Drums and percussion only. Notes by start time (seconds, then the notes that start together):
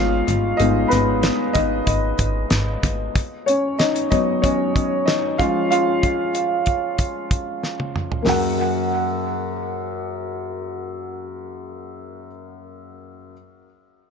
0.28 closed hi-hat
0.60 closed hi-hat
0.91 snare, closed hi-hat
1.23 snare, closed hi-hat
1.55 kick, closed hi-hat
1.87 kick, closed hi-hat
2.19 kick, closed hi-hat
2.50 snare, closed hi-hat
2.83 kick, closed hi-hat
3.15 kick, closed hi-hat
3.48 closed hi-hat
3.79 snare, closed hi-hat
3.96 closed hi-hat
4.12 kick, closed hi-hat
4.44 kick, closed hi-hat
4.76 kick, closed hi-hat
5.08 snare, closed hi-hat
5.39 kick, closed hi-hat
5.72 closed hi-hat
6.03 kick, closed hi-hat
6.35 closed hi-hat
6.66 kick, closed hi-hat
6.99 kick, closed hi-hat
7.31 kick, closed hi-hat
7.63 snare
7.80 high tom
7.96 mid tom
8.12 floor tom
8.27 snare, floor tom, open hi-hat